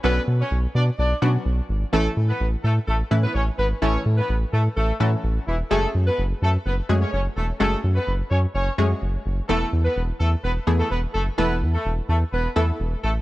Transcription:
X:1
M:4/4
L:1/16
Q:1/4=127
K:F#m
V:1 name="Horn section"
[B,B]2 z [Cc]2 z [Dd] z [Dd]2 [Dd] z4 z | [A,A]2 z [B,B]2 z [A,A] z [A,A] z2 [B,B] [Cc] z [B,B] z | [Cc]2 z [B,B]2 z [A,A] z [A,A]2 [F,F] z3 [E,E] z | [A,A]2 z [B,B]2 z [A,A] z [B,B] z2 [Cc] [Cc] z [A,A] z |
[A,A]2 z [B,B]2 z [Cc] z [Cc]2 [Cc] z4 z | [A,A]2 z [B,B]2 z [A,A] z [B,B] z2 [A,A] [B,B] z [A,A] z | [B,B]2 z [A,A]2 z [A,A] z [B,B]2 [A,A] z3 [A,A] z |]
V:2 name="Synth stab"
[F,B,CDA]4 z6 [F,B,CDF]4 z2 | [E,A,CEA]4 z6 [E,A,CEB]4 z2 | [E,A,CEA]4 z6 [E,A,CEA]4 z2 | [G,A,CFG]4 z6 [G,A,CFG]4 z2 |
[G,A,CFG]4 z6 [G,A,CFG]4 z2 | [E,A,B,EA]4 z6 [E,A,B,EG]4 z2 | [E,A,B,EA]4 z6 [E,A,B,EA]4 z2 |]
V:3 name="Analog synth bass" clef=bass
B,,,2 B,,2 B,,,2 B,,2 B,,,2 B,,2 B,,,2 G,,,2 | A,,,2 A,,2 A,,,2 A,,2 A,,,2 A,,2 A,,,2 G,,,2 | A,,,2 A,,2 A,,,2 A,,2 A,,,2 A,,2 A,,,2 E,,,2 | F,,,2 F,,2 F,,,2 F,,2 F,,,2 F,,2 F,,,2 E,,,2 |
F,,,2 F,,2 F,,,2 F,,2 F,,,2 F,,2 F,,,2 F,,,2 | E,,,2 E,,2 E,,,2 E,,2 E,,,2 E,,2 E,,,2 F,,,2 | E,,,2 E,,2 E,,,2 E,,2 E,,,2 E,,2 E,,,2 A,,,2 |]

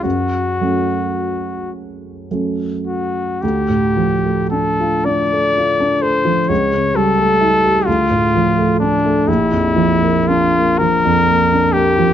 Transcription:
X:1
M:6/8
L:1/16
Q:3/8=40
K:F#m
V:1 name="Trumpet"
F6 z4 F2 | [K:Dm] G4 A2 d4 c2 | ^c2 A4 F4 D2 | E4 F2 B4 G2 |]
V:2 name="Grand piano"
F,,2 [F,A,C]6 [F,A,C]4 | [K:Dm] D,, A,, F, A, D F D A, F D A, F, | ^C,, ^C, G, A, E G D,, A,, F, A, D A, | B,,, F,, F, B, D B, F, F,, B, D B, F, |]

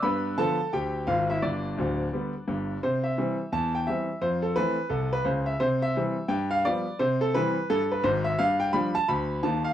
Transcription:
X:1
M:4/4
L:1/8
Q:"Swing" 1/4=172
K:C
V:1 name="Grand piano"
[Bb]2 [Aa]2 [Gg]2 [Ff] [Ee] | [Dd]6- [Dd] z | c e3 a g e2 | c A B2 A B c e |
c e3 g f d2 | c A B2 A B c e | f g b a b2 a f |]
V:2 name="Grand piano" clef=bass
[G,,B,]2 [D,F,B,]2 D,,2 [_A,,,_A,,]2 | [G,,,G,,]2 [D,,,D,,]2 [D,G,B,]2 [G,,,G,,]2 | C,2 [E,G,C]2 E,,2 [E,G,C]2 | F,,2 [E,A,C]2 C,,2 [_D,,_D,]2 |
C,2 [E,G,C]2 G,,2 [F,G,B,]2 | C,2 [E,G,C]2 G,,2 [_A,,,_A,,]2 | G,,2 [F,G,D]2 D,,2 [_E,,_E,]2 |]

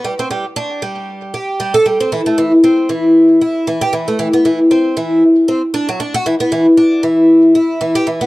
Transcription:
X:1
M:4/4
L:1/16
Q:"Swing 16ths" 1/4=116
K:Em
V:1 name="Twelve-string acoustic guitar"
G, C G, z D2 G,4 G2 G, A G, C | E, A, E, z C2 E,4 E2 E, G E, A, | E, B, E, z C2 E,2 z2 C z D F, D F | E, B, E, z D2 E,4 E2 E, G E, B, |]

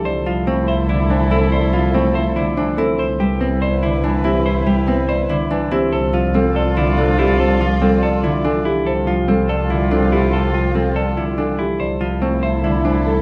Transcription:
X:1
M:7/8
L:1/8
Q:1/4=143
K:Flyd
V:1 name="Marimba"
d z c e z c A | d z c e z c A | c z B d z B G | c z B d z B G |
c z A d z A G | c z A d z A G | c z A d z A G | c z A d z A G |
d z c e z c A |]
V:2 name="String section"
[EA]6- [EA]- | [EA]6 z | [EB]6- [EB]- | [EB]6 z |
[Fd]6- [Fd]- | [Fd]6 z | [FG]6- [FG]- | [FG]6 z |
[EA]6- [EA] |]
V:3 name="Clean electric guitar"
c F C c E D E | c F C c E D E | c G C c E D E | c G C c E D E |
A F C A E D E | A F C A E D E | A F C A E D E | A F C A E D E |
c F C c E D z |]
V:4 name="Soprano saxophone"
E6- E- | E6 z | E6- E- | E6 z |
F6- F- | F6 z | F6- F- | F6 z |
E6- E |]
V:5 name="Harp" clef=bass
F, F, A,2 D, E, C- | C F, A,2 D, E, C- | C G, B,2 D, E, C- | C G, B,2 D, E, C- |
C F, G,2 D, C,2- | C, F, G,2 D, E,2 | z F, G,2 D, C,2- | C, F, G,2 D, E,2 |
z F, A,2 D, E,2 |]
V:6 name="Double bass" clef=bass
C,,6- C,,- | C,,6- C,, | C,,6- C,,- | C,,6- C,, |
C,,6- C,,- | C,,6- C,, | C,,6- C,,- | C,,6- C,, |
C,,6- C,, |]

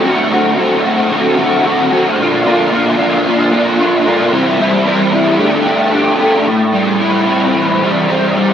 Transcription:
X:1
M:4/4
L:1/8
Q:1/4=112
K:Ador
V:1 name="Overdriven electric guitar"
[D,A,CF] [D,A,CF] [D,A,CF] [D,A,CF] [D,A,CF] [D,A,CF] [D,A,CF] [D,A,CF] | [_B,,D,_B,D=F] [B,,D,B,DF] [B,,D,B,DF] [B,,D,B,DF] [B,,D,B,DF] [B,,D,B,DF] [B,,D,B,DF] [B,,D,B,DF] | [C,E,G,CE] [C,E,G,CE] [C,E,G,CE] [C,E,G,CE] [D,A,DG] [D,A,DG] [D,A,DG] [D,A,DG] | A,, G, E C E, G, C G, |]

